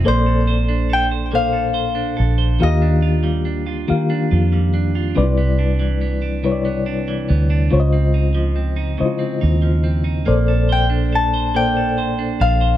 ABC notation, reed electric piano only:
X:1
M:6/8
L:1/8
Q:3/8=47
K:Bb
V:1 name="Reed electric piano"
[B,,B,Acd]2 z [B,,B,Acf]2 z | [E,B,FGf]2 z [E,B,FGf]2 z | [C,G,D=E=Bd]2 z [C,G,EB_d=d]2 z | [_D,_A,Fc_de]2 z [D,A,=EFc_e]2 z |
[B,,B,Acd]2 z [B,,B,Acd]2 z |]